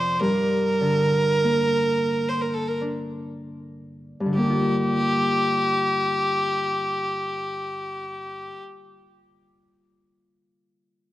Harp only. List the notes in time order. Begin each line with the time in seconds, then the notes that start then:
Already playing: F2 C3 F3 C4
0.21 G2
0.81 D3
1.44 A#3
2.81 D4
4.20 G2
4.26 D3
4.32 G3
4.38 A#3
4.44 D4
4.50 F4